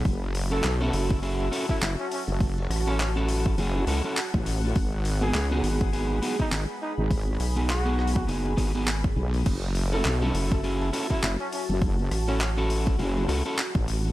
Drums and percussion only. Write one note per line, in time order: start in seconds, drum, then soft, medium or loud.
0.05 kick loud
0.05 open hi-hat soft
0.14 open hi-hat soft
0.35 open hi-hat medium
0.52 open hi-hat soft
0.64 clap loud
0.64 open hi-hat soft
0.81 open hi-hat soft
0.93 open hi-hat medium
1.10 kick loud
1.10 open hi-hat soft
1.23 open hi-hat soft
1.40 open hi-hat soft
1.53 open hi-hat medium
1.69 kick medium
1.69 open hi-hat soft
1.82 clap loud
1.82 open hi-hat soft
1.99 open hi-hat soft
2.12 open hi-hat medium
2.29 open hi-hat soft
2.40 kick loud
2.40 open hi-hat soft
2.58 open hi-hat soft
2.71 cross-stick soft
2.71 open hi-hat medium
2.76 cross-stick soft
2.80 cross-stick soft
2.88 cross-stick soft
2.88 open hi-hat soft
2.90 cross-stick soft
2.96 cross-stick soft
3.00 clap loud
3.00 open hi-hat soft
3.17 open hi-hat soft
3.19 open hi-hat soft
3.23 open hi-hat soft
3.25 open hi-hat soft
3.27 open hi-hat soft
3.27 open hi-hat medium
3.46 kick loud
3.46 open hi-hat soft
3.58 open hi-hat soft
3.75 open hi-hat soft
3.87 open hi-hat medium
4.04 open hi-hat soft
4.17 clap loud
4.17 open hi-hat soft
4.34 kick loud
4.34 open hi-hat soft
4.46 open hi-hat medium
4.70 open hi-hat soft
4.75 kick loud
4.75 open hi-hat soft
4.93 open hi-hat soft
5.05 open hi-hat medium
5.22 open hi-hat soft
5.34 clap loud
5.34 open hi-hat soft
5.52 open hi-hat soft
5.64 open hi-hat medium
5.81 kick loud
5.81 open hi-hat soft
5.93 open hi-hat soft
6.10 open hi-hat soft
6.23 open hi-hat medium
6.40 kick medium
6.40 open hi-hat soft
6.52 clap loud
6.52 open hi-hat soft
6.69 open hi-hat soft
7.11 kick loud
7.11 open hi-hat soft
7.28 open hi-hat soft
7.40 open hi-hat medium
7.57 open hi-hat soft
7.70 clap loud
7.70 open hi-hat soft
7.87 open hi-hat soft
7.99 cross-stick soft
8.07 open hi-hat medium
8.16 kick loud
8.16 open hi-hat soft
8.29 open hi-hat soft
8.46 open hi-hat soft
8.58 kick medium
8.58 open hi-hat medium
8.75 open hi-hat soft
8.87 clap loud
8.87 open hi-hat soft
9.04 kick loud
9.04 open hi-hat soft
9.34 open hi-hat soft
9.46 kick loud
9.46 open hi-hat soft
9.46 crash medium
9.63 open hi-hat soft
9.75 open hi-hat medium
9.93 open hi-hat soft
10.05 clap loud
10.05 open hi-hat soft
10.22 open hi-hat soft
10.35 open hi-hat medium
10.52 kick loud
10.52 open hi-hat soft
10.64 open hi-hat soft
10.81 open hi-hat soft
10.93 open hi-hat medium
11.10 kick medium
11.10 open hi-hat soft
11.23 clap loud
11.23 open hi-hat soft
11.40 open hi-hat soft
11.53 open hi-hat medium
11.70 open hi-hat soft
11.82 kick loud
11.82 open hi-hat soft
11.99 open hi-hat soft
12.11 cross-stick soft
12.11 open hi-hat medium
12.28 open hi-hat soft
12.41 clap loud
12.41 open hi-hat soft
12.58 open hi-hat soft
12.70 open hi-hat medium
12.87 kick loud
12.87 open hi-hat soft
12.99 open hi-hat soft
13.17 open hi-hat soft
13.29 open hi-hat medium
13.46 open hi-hat soft
13.58 clap loud
13.58 open hi-hat soft
13.75 kick loud
13.75 open hi-hat soft
13.88 open hi-hat medium
14.05 open hi-hat soft